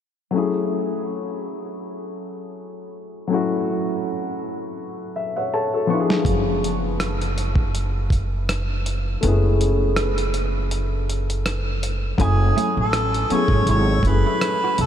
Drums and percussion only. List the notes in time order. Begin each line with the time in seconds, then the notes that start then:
6.10 snare
6.25 kick, closed hi-hat
6.64 closed hi-hat
7.00 cross-stick, closed hi-hat
7.21 closed hi-hat
7.38 closed hi-hat
7.56 kick
7.75 closed hi-hat
8.10 kick, closed hi-hat
8.49 cross-stick, closed hi-hat
8.86 closed hi-hat
9.23 closed hi-hat
9.61 closed hi-hat
9.96 cross-stick, closed hi-hat
10.18 closed hi-hat
10.34 closed hi-hat
10.71 closed hi-hat
11.10 closed hi-hat
11.30 closed hi-hat
11.46 cross-stick, closed hi-hat
11.83 closed hi-hat
12.18 kick, closed hi-hat
12.58 closed hi-hat
12.93 cross-stick, closed hi-hat
13.14 closed hi-hat
13.30 closed hi-hat
13.48 kick
13.67 closed hi-hat
14.03 kick, closed hi-hat
14.41 cross-stick, closed hi-hat
14.78 closed hi-hat